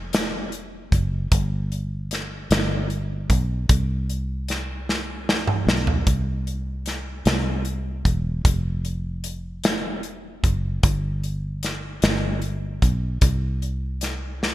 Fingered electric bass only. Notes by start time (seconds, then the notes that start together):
Already playing: F1
0.92 F#1
1.32 G1
2.51 G1
3.30 B1
3.69 C2
5.67 B1
6.07 C2
7.26 C2
8.05 E1
8.45 F1
10.44 F#1
10.83 G1
12.03 G1
12.82 B1
13.22 C2